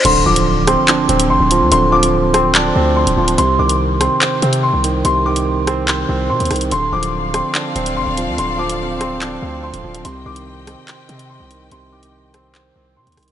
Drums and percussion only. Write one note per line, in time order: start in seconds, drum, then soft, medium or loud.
0.05 closed hi-hat medium
0.05 crash loud
0.36 closed hi-hat medium
0.67 cross-stick medium
0.67 closed hi-hat medium
0.88 clap loud
0.88 closed hi-hat medium
1.09 closed hi-hat medium
1.20 closed hi-hat medium
1.51 closed hi-hat medium
1.72 closed hi-hat medium
2.03 closed hi-hat medium
2.34 cross-stick medium
2.34 closed hi-hat medium
2.55 clap loud
2.55 closed hi-hat medium
3.07 closed hi-hat medium
3.28 closed hi-hat medium
3.38 closed hi-hat medium
3.69 closed hi-hat medium
4.01 cross-stick medium
4.01 closed hi-hat medium
4.21 clap loud
4.21 closed hi-hat medium
4.42 closed hi-hat medium
4.53 closed hi-hat medium
4.84 closed hi-hat medium
5.05 closed hi-hat medium
5.36 closed hi-hat medium
5.67 cross-stick loud
5.67 closed hi-hat medium
5.88 clap loud
5.88 closed hi-hat medium
6.40 closed hi-hat soft
6.45 closed hi-hat medium
6.51 cross-stick medium
6.51 closed hi-hat medium
6.51 open hi-hat medium
6.56 closed hi-hat medium
6.61 closed hi-hat medium
6.71 closed hi-hat medium
7.03 closed hi-hat medium
7.34 cross-stick medium
7.34 closed hi-hat medium
7.55 clap loud
7.55 closed hi-hat medium
7.76 closed hi-hat medium
7.86 closed hi-hat medium
8.17 closed hi-hat medium
8.38 closed hi-hat medium
8.70 closed hi-hat medium
9.01 cross-stick medium
9.01 closed hi-hat medium
9.21 clap loud
9.21 closed hi-hat medium
9.74 closed hi-hat medium
9.95 closed hi-hat medium
10.05 closed hi-hat medium
10.36 closed hi-hat medium
10.67 cross-stick loud
10.67 closed hi-hat medium
10.88 clap loud
10.88 closed hi-hat medium
11.09 closed hi-hat medium
11.19 closed hi-hat medium
11.51 closed hi-hat medium
11.72 closed hi-hat medium
12.03 closed hi-hat medium
12.34 cross-stick loud
12.34 closed hi-hat medium
12.55 clap loud
12.55 closed hi-hat medium
13.07 closed hi-hat soft
13.12 closed hi-hat medium
13.17 cross-stick medium
13.17 closed hi-hat medium
13.17 open hi-hat medium
13.23 closed hi-hat medium
13.28 closed hi-hat medium